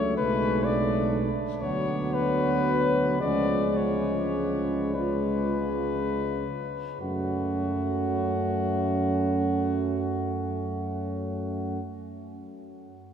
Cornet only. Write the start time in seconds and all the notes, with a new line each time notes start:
Already playing: C#5
0.17 B4
0.65 D5
1.61 C#5
2.14 B4
3.21 D5
3.77 C#5
4.95 B4
7.01 F#4